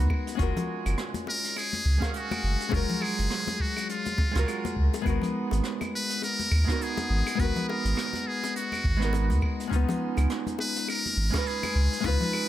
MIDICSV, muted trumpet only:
0, 0, Header, 1, 2, 480
1, 0, Start_track
1, 0, Tempo, 582524
1, 325, Time_signature, 4, 2, 24, 8
1, 10288, End_track
2, 0, Start_track
2, 0, Title_t, "Muted trumpet"
2, 0, Program_c, 0, 59
2, 1065, Note_on_c, 0, 70, 121
2, 1279, Note_off_c, 0, 70, 0
2, 1302, Note_on_c, 0, 68, 115
2, 1741, Note_off_c, 0, 68, 0
2, 1785, Note_on_c, 0, 66, 102
2, 2259, Note_on_c, 0, 70, 117
2, 2271, Note_off_c, 0, 66, 0
2, 2497, Note_on_c, 0, 68, 109
2, 2509, Note_off_c, 0, 70, 0
2, 2976, Note_on_c, 0, 66, 95
2, 2988, Note_off_c, 0, 68, 0
2, 3211, Note_off_c, 0, 66, 0
2, 3216, Note_on_c, 0, 65, 94
2, 3898, Note_off_c, 0, 65, 0
2, 4908, Note_on_c, 0, 71, 116
2, 5121, Note_off_c, 0, 71, 0
2, 5142, Note_on_c, 0, 70, 121
2, 5625, Note_on_c, 0, 68, 103
2, 5637, Note_off_c, 0, 70, 0
2, 6099, Note_on_c, 0, 71, 108
2, 6112, Note_off_c, 0, 68, 0
2, 6333, Note_off_c, 0, 71, 0
2, 6337, Note_on_c, 0, 70, 107
2, 6819, Note_on_c, 0, 68, 99
2, 6832, Note_off_c, 0, 70, 0
2, 7053, Note_off_c, 0, 68, 0
2, 7056, Note_on_c, 0, 66, 99
2, 7738, Note_off_c, 0, 66, 0
2, 8742, Note_on_c, 0, 71, 123
2, 8957, Note_off_c, 0, 71, 0
2, 8981, Note_on_c, 0, 70, 125
2, 9455, Note_on_c, 0, 68, 105
2, 9467, Note_off_c, 0, 70, 0
2, 9934, Note_on_c, 0, 71, 127
2, 9946, Note_off_c, 0, 68, 0
2, 10288, Note_off_c, 0, 71, 0
2, 10288, End_track
0, 0, End_of_file